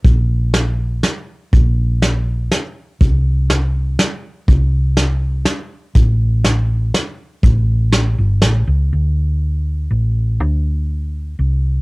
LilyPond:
<<
  \new Staff \with { instrumentName = "Fingered electric bass" } { \clef bass \time 3/4 \key c \mixolydian \tempo 4 = 122 bes,,2 r4 | bes,,2 r4 | c,2 r4 | c,2 r4 |
a,,2 r4 | a,,4. g,,8 a,,8 cis,8 | d,2 a,,4 | d,2 c,4 | }
  \new DrumStaff \with { instrumentName = "Drums" } \drummode { \time 3/4 <hh bd>4 <hh sn>4 <hh sn>4 | <hh bd>4 <hh sn>4 <hh sn>4 | <hh bd>4 <hh sn>4 <hh sn>4 | <hh bd>4 <hh sn>4 <hh sn>4 |
<hh bd>4 <hh sn>4 <hh sn>4 | <hh bd>4 <hh sn>4 <hh sn>4 | r4 r4 r4 | r4 r4 r4 | }
>>